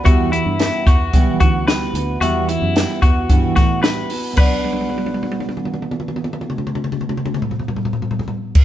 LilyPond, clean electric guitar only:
\new Staff \with { instrumentName = "Clean electric guitar" } { \time 4/4 \key b \minor \tempo 4 = 111 fis'8 e'4 fis'4 fis'8 b'4 | fis'8 e'4 fis'4 fis'8 b'4 | b'1~ | b'1 | }